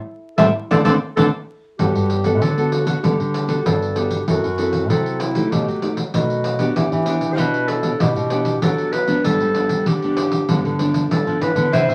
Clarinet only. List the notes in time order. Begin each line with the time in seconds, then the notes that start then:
0.37 A4
0.71 A4
0.84 A4
1.16 A4
1.79 G4
2.41 A4
2.72 F#4
3.03 G4
3.66 A4
3.98 G4
4.29 F#4
4.90 A4
5.20 E4
5.51 G4
6.14 F#4
6.76 G4
7.32 C5
7.39 B4
7.68 A4
8.00 G4
8.62 A4
8.93 B4
9.25 A4
9.87 G4
11.11 A4
11.42 B4
11.73 C5